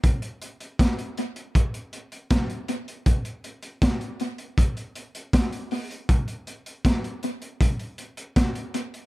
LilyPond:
\new DrumStaff \with { instrumentName = "Drums" } \drummode { \time 4/4 \tempo 4 = 79 <hh bd>16 hh16 hh16 hh16 <hh bd sn>16 hh16 hh16 hh16 <hh bd>16 hh16 hh16 hh16 <hh bd sn>16 hh16 hh16 hh16 | <hh bd>16 hh16 hh16 hh16 <hh bd sn>16 hh16 hh16 hh16 <hh bd>16 hh16 hh16 hh16 <hh bd sn>16 hh16 hho16 hh16 | <hh bd>16 hh16 hh16 hh16 <hh bd sn>16 hh16 hh16 hh16 <hh bd>16 hh16 hh16 hh16 <hh bd sn>16 hh16 hh16 hh16 | }